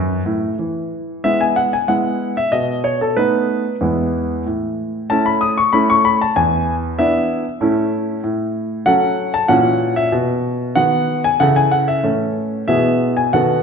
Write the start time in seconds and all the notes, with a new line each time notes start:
Already playing: F#2 D#4 B4
0.26 A2
0.59 E3
1.24 G#3 B3 E4 E5
1.41 G#5
1.56 F#5
1.73 G#5
1.88 G#3 B3 E4 F#5
2.37 E5
2.52 B2 D#5
2.84 C#5
3.01 A4
3.17 A3 B3 D#4 B4
3.81 E2 G#3 B3 E4
4.46 A2
5.10 A3 C#4 E4 A5
5.26 B5
5.41 D#6
5.58 C#6
5.73 A3 C#4 E4 B5
5.90 C#6
6.05 B5
6.21 A5
6.36 E2 G#5
6.99 B3 D4 E4 E5
7.61 A2 A3 C#4 E4
8.24 A2
8.86 F#3 C#4 A4 F#5
9.34 A5
9.48 A#2 E3 C#4 F#4 F#5
9.96 E5
10.12 B2
10.75 D#3 B3 F#4 F#5
11.24 G#5
11.40 C#3 E3 E4 A4 F#5
11.56 G#5
11.72 F#5
11.88 E5
12.03 A2 E3 C#4 A4
12.68 B2 E3 B3 G#4 E5
13.17 G#5
13.33 B2 D#3 B3 A4 F#5